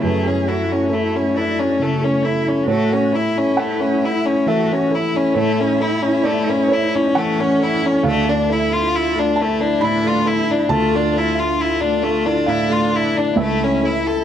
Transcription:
0.00 2.64 F#2 medium
0.00 2.63 A3 medium
0.00 0.28 A3 medium
0.00 0.16 E4 soft
0.00 2.63 E4 medium
0.00 2.63 F#4 medium
0.00 0.49 G#4 medium
0.00 0.87 B4 medium
0.27 0.62 A3 soft
0.27 0.50 C#4 soft
0.47 0.74 E4 soft
0.47 0.90 F#4 medium
0.47 0.84 A4 soft
0.72 0.95 C#4 medium
0.72 1.41 E4 soft
0.89 1.17 A3 medium
0.89 1.37 E4 medium
0.89 1.36 A4 medium
1.15 1.49 A3 soft
1.15 1.39 C#4 soft
1.36 1.79 D4 medium
1.36 1.61 E4 medium
1.36 1.71 A4 soft
1.59 1.84 C#4 medium
1.59 1.94 E4 soft
1.78 2.14 C#3 soft
1.78 2.24 C#4 medium
1.82 2.06 A3 medium
2.02 2.37 A3 soft
2.02 2.27 C#4 medium
2.23 2.66 E4 medium
2.23 2.50 E4 medium
2.23 2.59 A4 medium
2.46 2.69 C#4 medium
2.46 2.68 E4 soft
2.66 5.31 A2 medium
2.66 8.00 A3 medium
2.66 2.95 A3 medium
2.66 8.01 E4 medium
2.66 3.14 F#4 medium
2.66 8.01 A4 medium
2.66 3.54 C#5 medium
2.91 3.27 A3 soft
2.91 3.17 C#4 medium
3.13 4.48 E4 medium
3.13 3.39 E4 medium
3.13 3.49 A4 medium
3.35 3.61 C#4 medium
3.35 4.07 E4 soft
3.57 3.82 A3 medium
3.57 4.43 F#5 medium
3.79 4.16 A3 medium
3.79 4.07 C#4 medium
4.02 4.27 E4 medium
4.02 4.38 A4 medium
4.24 4.50 C#4 medium
4.24 4.60 E4 medium
4.46 4.82 E3 soft
4.46 4.74 A3 medium
4.46 4.93 F#4 medium
4.46 5.32 E5 medium
4.67 5.04 A3 medium
4.73 4.96 C#4 medium
4.91 7.15 E4 medium
4.91 5.18 E4 medium
4.91 5.26 A4 medium
5.14 5.37 C#4 medium
5.14 5.49 E4 medium
5.34 8.00 A2 medium
5.34 5.62 A3 medium
5.34 6.20 C#5 medium
5.59 5.94 A3 medium
5.59 5.83 C#4 medium
5.80 6.04 E4 medium
5.80 6.15 A4 medium
6.02 6.27 C#4 medium
6.02 6.75 E4 medium
6.23 6.51 A3 medium
6.23 6.66 D5 loud
6.47 6.84 A3 medium
6.47 6.75 C#4 medium
6.69 7.07 A4 medium
6.69 7.12 C#5 medium
6.73 6.97 E4 medium
6.95 7.20 C#4 medium
6.95 7.30 E4 medium
7.15 7.52 E3 medium
7.15 7.42 A3 medium
7.15 8.06 C#4 medium
7.15 8.01 F#5 loud
7.38 7.74 A3 medium
7.38 7.65 C#4 medium
7.59 7.95 A4 medium
7.63 7.88 E4 medium
7.82 8.07 C#4 medium
7.82 8.05 E4 medium
8.03 10.65 D2 medium
8.03 13.33 A3 medium
8.03 8.30 A3 medium
8.03 13.33 D4 medium
8.03 8.51 D4 medium
8.03 13.33 A4 medium
8.03 9.33 F5 medium
8.26 8.62 A3 medium
8.26 8.54 D4 medium
8.49 8.94 E4 medium
8.49 8.74 E4 medium
8.49 8.85 A4 medium
8.71 9.42 F4 medium
8.71 8.97 F4 medium
8.95 9.20 E4 medium
8.95 9.40 F4 medium
9.15 9.51 A3 medium
9.15 9.43 D4 medium
9.36 9.84 E4 medium
9.36 9.73 A4 medium
9.36 9.78 A5 loud
9.42 9.62 A3 medium
9.59 9.86 D4 medium
9.59 9.95 E4 medium
9.81 10.17 A2 medium
9.81 10.28 D4 medium
9.81 10.09 E4 medium
9.81 10.66 B5 loud
10.04 10.39 A3 medium
10.04 10.29 F4 medium
10.25 10.70 E4 medium
10.25 10.53 E4 medium
10.25 10.61 A4 medium
10.48 10.72 D4 medium
10.48 10.84 E4 medium
10.69 13.32 D2 medium
10.69 11.57 F4 loud
10.69 12.43 A5 loud
10.73 10.97 A3 medium
10.92 11.27 A3 medium
10.96 11.19 D4 medium
11.13 11.49 A4 medium
11.18 11.41 E4 medium
11.35 11.63 F4 medium
11.35 12.07 E5 medium
11.59 11.82 E4 medium
11.59 12.48 F4 medium
11.81 12.16 A3 medium
11.81 12.04 D4 medium
12.03 12.27 A3 medium
12.03 12.38 A4 medium
12.25 12.51 D4 medium
12.25 12.61 E4 medium
12.46 12.83 A2 medium
12.46 13.35 D4 medium
12.46 12.74 E4 medium
12.46 12.88 F5 medium
12.69 13.05 A3 medium
12.69 12.98 F4 medium
12.93 13.19 E4 medium
12.93 13.28 A4 medium
13.16 13.38 D4 medium
13.16 13.38 E4 medium
13.35 14.24 C#2 medium
13.35 14.24 A3 medium
13.35 14.24 E4 medium
13.35 14.24 A4 medium
13.35 14.23 E5 loud
13.42 13.65 A3 medium
13.60 13.96 A3 medium
13.60 13.87 C#4 medium
13.82 14.08 E4 medium
13.82 14.18 A4 medium
14.04 14.24 E4 medium
14.04 14.24 A4 medium

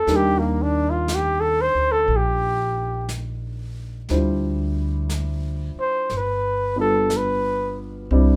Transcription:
0.00 0.10 F4 soft
0.00 0.17 A4 medium
0.07 1.70 D#2 medium
0.07 4.08 G3 medium
0.07 4.10 A#3 medium
0.07 4.09 D4 medium
0.07 4.10 D#4 medium
0.07 4.10 A#4 medium
0.07 brush sweep soft
0.07 snare soft
0.16 0.40 G4 medium
0.39 0.64 A#3 medium
0.62 0.91 D4 medium
0.90 1.16 F4 medium
1.08 brush sweep soft
1.08 snare soft
1.08 hi-hat pedal medium
1.15 1.42 G4 medium
1.40 1.63 A4 medium
1.61 1.94 C5 loud
1.75 2.07 D2 medium
1.92 2.18 A4 medium
2.08 4.05 A#1 medium
2.08 brush sweep soft
2.16 3.13 G4 medium
3.09 brush sweep soft
3.09 snare soft
3.09 hi-hat pedal medium
4.09 5.72 D2 medium
4.09 6.10 G3 medium
4.09 6.11 D4 medium
4.09 6.11 E4 medium
4.09 6.11 F4 medium
4.09 6.11 C5 medium
4.09 brush sweep soft
4.09 snare soft
5.09 brush sweep soft
5.09 snare medium
5.09 hi-hat pedal medium
5.76 muted upright bass stroke soft
5.81 6.19 C5 medium
6.10 8.07 G1 medium
6.10 brush sweep soft
6.10 snare soft
6.17 6.80 B4 medium
6.76 8.10 G3 medium
6.76 8.11 B3 soft
6.76 8.10 D4 soft
6.76 8.11 F4 medium
6.76 8.11 B4 medium
6.80 7.18 A4 medium
7.10 brush sweep soft
7.10 snare soft
7.10 hi-hat pedal soft
7.17 7.80 B4 medium
8.11 8.36 C2 medium
8.11 8.36 G3 medium
8.11 8.36 C4 medium
8.11 8.36 D4 medium
8.11 8.36 E4 medium
8.11 8.36 D5 medium
8.11 brush sweep soft

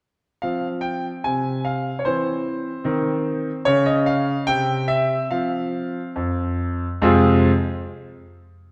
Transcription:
0.42 1.08 F3 soft
0.42 2.01 C4 soft
0.42 0.67 F5 medium
0.81 1.06 G5 medium
1.24 1.90 C3 medium
1.24 1.65 G#5 medium
1.65 1.98 F5 medium
1.99 2.05 C#5 medium
2.05 2.70 E3 medium
2.05 2.81 C4 soft
2.05 3.66 C5 medium
2.84 3.49 D#3 medium
2.84 3.61 C4 medium
3.65 4.31 C#3 medium
3.65 4.44 C#4 soft
3.65 3.86 C#5 medium
3.86 4.06 D#5 medium
4.06 4.47 F5 medium
4.47 5.14 C3 medium
4.47 5.27 C4 medium
4.47 4.84 G5 loud
4.88 5.26 E5 medium
5.31 5.99 F3 medium
5.31 6.97 C4 soft
5.31 6.07 F5 medium
6.16 6.84 F2 medium
7.02 7.49 F2 medium
7.02 7.49 C3 medium
7.02 7.49 G#3 medium
7.02 7.50 C4 medium
7.02 7.50 F4 medium
7.02 7.50 G#4 medium

